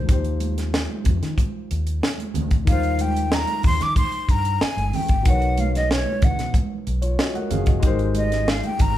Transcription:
0.00 0.12 G#3 soft
0.00 0.07 D#4 soft
0.00 0.11 G4 soft
0.00 0.10 A#4 soft
0.00 0.10 C5 medium
0.00 0.27 C5 medium
0.06 0.86 D#2 loud
0.06 2.62 F3 medium
0.06 2.62 D#4 medium
0.06 2.64 F4 soft
0.06 kick loud
0.06 closed hi-hat medium
0.11 2.64 G4 medium
0.11 2.65 C5 medium
0.24 closed hi-hat soft
0.40 closed hi-hat medium
0.40 high conga medium
0.58 snare soft
0.58 closed hi-hat medium
0.73 snare loud
0.73 muted conga soft
0.89 high conga medium
1.04 1.21 F2 medium
1.04 kick medium
1.04 closed hi-hat medium
1.04 muted conga soft
1.04 low conga medium
1.23 1.37 D#3 medium
1.23 snare soft
1.23 closed hi-hat soft
1.37 kick medium
1.37 closed hi-hat medium
1.37 high conga medium
1.71 1.99 D#2 medium
1.71 closed hi-hat medium
1.87 closed hi-hat soft
2.01 snare loud
2.01 muted conga soft
2.18 closed hi-hat soft
2.18 high conga medium
2.34 2.64 D2 medium
2.34 closed hi-hat medium
2.34 muted conga soft
2.34 low conga medium
2.51 kick medium
2.51 closed hi-hat soft
2.65 3.44 D#2 loud
2.65 5.20 D#3 medium
2.65 5.21 D#4 medium
2.65 5.22 F4 medium
2.65 3.03 F5 medium
2.65 kick loud
2.65 closed hi-hat medium
2.65 muted conga soft
2.70 5.23 G3 medium
2.70 5.24 C5 medium
2.83 closed hi-hat soft
2.99 3.36 G5 loud
2.99 closed hi-hat medium
2.99 high conga medium
3.16 closed hi-hat medium
3.32 3.65 A#5 loud
3.32 snare loud
3.47 closed hi-hat soft
3.47 high conga medium
3.63 3.79 D#2 medium
3.63 3.84 C6 loud
3.63 kick medium
3.63 open hi-hat medium
3.63 muted conga soft
3.63 low conga medium
3.81 3.95 D#3 loud
3.81 3.97 D6 loud
3.81 snare soft
3.81 closed hi-hat medium
3.96 4.32 C6 loud
3.96 kick medium
3.96 closed hi-hat medium
3.96 high conga soft
4.12 closed hi-hat soft
4.29 4.57 G2 medium
4.29 4.64 A#5 medium
4.29 kick medium
4.29 closed hi-hat medium
4.45 closed hi-hat medium
4.61 4.97 G#5 loud
4.61 muted fingered electric bass stroke soft
4.61 snare loud
4.76 4.91 G1 medium
4.76 closed hi-hat soft
4.76 high conga medium
4.93 5.29 G5 medium
4.93 open hi-hat medium
4.93 muted conga soft
4.93 low conga medium
5.08 5.24 G#1 medium
5.08 kick medium
5.08 closed hi-hat medium
5.22 6.02 B1 loud
5.22 7.78 B2 medium
5.22 7.78 B3 medium
5.22 kick loud
5.22 closed hi-hat medium
5.22 muted conga soft
5.26 7.80 D#4 medium
5.26 6.85 A#4 medium
5.26 6.86 C#5 medium
5.26 5.62 F#5 medium
5.42 closed hi-hat soft
5.58 5.75 F5 medium
5.58 closed hi-hat medium
5.58 muted conga soft
5.58 high conga medium
5.75 5.90 D#5 medium
5.75 snare soft
5.75 closed hi-hat soft
5.91 6.26 C#5 medium
5.91 snare loud
6.06 high conga medium
6.21 6.37 C#2 medium
6.21 6.56 F#5 medium
6.21 kick loud
6.21 closed hi-hat medium
6.21 muted conga soft
6.21 low conga medium
6.38 6.52 B2 medium
6.38 snare soft
6.38 closed hi-hat medium
6.54 kick medium
6.54 closed hi-hat medium
6.54 muted conga soft
6.54 high conga soft
6.87 7.15 B1 medium
6.87 closed hi-hat medium
7.02 7.18 F4 medium
7.02 7.18 C#5 medium
7.02 closed hi-hat medium
7.19 7.35 F#4 medium
7.19 7.34 D#5 medium
7.19 snare loud
7.19 muted conga soft
7.34 7.51 A#4 medium
7.34 7.50 F#5 medium
7.34 closed hi-hat soft
7.34 high conga medium
7.51 7.80 F#1 medium
7.51 7.66 G#4 medium
7.51 7.66 F5 medium
7.51 closed hi-hat medium
7.51 low conga medium
7.66 7.98 F#4 medium
7.66 7.98 D#5 medium
7.66 kick medium
7.66 closed hi-hat soft
7.80 8.60 G#1 loud
7.80 8.98 G#3 medium
7.80 8.98 D#4 medium
7.80 8.98 G4 medium
7.80 kick loud
7.80 closed hi-hat medium
7.85 8.98 A#4 medium
7.85 8.98 C5 medium
7.99 closed hi-hat soft
8.14 8.51 D#5 medium
8.14 closed hi-hat medium
8.14 muted conga soft
8.14 high conga medium
8.32 snare soft
8.32 closed hi-hat medium
8.48 8.65 F5 loud
8.48 snare loud
8.63 8.83 G5 medium
8.63 closed hi-hat soft
8.63 high conga medium
8.79 8.94 G#1 medium
8.79 8.98 A#5 loud
8.79 kick medium
8.79 closed hi-hat medium
8.79 muted conga soft
8.79 low conga medium

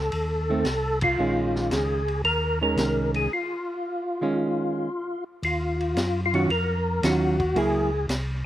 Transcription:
0.00 0.10 C#2 medium
0.00 0.99 A4 medium
0.12 0.64 D#2 medium
0.12 ride medium
0.50 0.64 D#3 medium
0.50 0.64 A3 medium
0.50 0.65 C4 medium
0.65 1.17 C2 medium
0.65 snare medium
0.65 hi-hat pedal soft
0.65 ride medium
1.01 1.75 F4 medium
1.01 kick medium
1.01 ride medium
1.18 1.70 A#1 medium
1.18 2.01 D#3 soft
1.18 2.02 G#3 soft
1.18 2.02 C#4 medium
1.55 snare soft
1.71 2.23 C#2 medium
1.71 2.22 G#4 medium
1.71 snare medium
1.71 hi-hat pedal soft
1.71 ride medium
2.08 ride soft
2.24 2.76 D#2 medium
2.24 2.59 A#4 loud
2.24 ride medium
2.61 3.28 D#3 medium
2.61 3.28 G#3 medium
2.61 3.28 C#4 medium
2.61 3.12 A#4 medium
2.76 3.29 C2 medium
2.76 snare medium
2.76 hi-hat pedal soft
2.76 ride medium
3.14 3.32 G#4 medium
3.14 ride soft
3.33 5.24 F4 medium
4.21 4.87 D#3 medium
4.21 4.88 G#3 medium
4.21 4.88 C#4 medium
5.43 5.95 D#2 medium
5.43 6.21 F4 medium
5.43 ride medium
5.80 ride soft
5.95 6.47 F#2 medium
5.95 snare medium
5.95 hi-hat pedal soft
5.95 ride medium
6.26 6.34 F4 medium
6.34 6.48 D#3 medium
6.34 6.49 F#3 medium
6.34 6.49 C#4 medium
6.34 6.49 F4 medium
6.34 6.51 F#4 medium
6.34 ride soft
6.49 7.01 F2 medium
6.49 7.05 A#4 loud
6.49 ride medium
7.02 7.54 D#2 medium
7.02 7.36 D#3 medium
7.02 7.36 F#3 soft
7.02 7.36 C#4 medium
7.02 7.37 F4 medium
7.02 7.59 F#4 medium
7.02 snare medium
7.02 hi-hat pedal medium
7.02 ride medium
7.40 kick medium
7.40 ride soft
7.54 8.07 C#2 medium
7.54 7.89 F#3 medium
7.54 7.89 A#3 medium
7.54 7.89 E4 medium
7.54 7.89 G#4 medium
7.54 8.06 G#4 medium
7.54 ride medium
8.08 8.46 C2 medium
8.08 snare medium
8.08 hi-hat pedal medium
8.08 ride medium

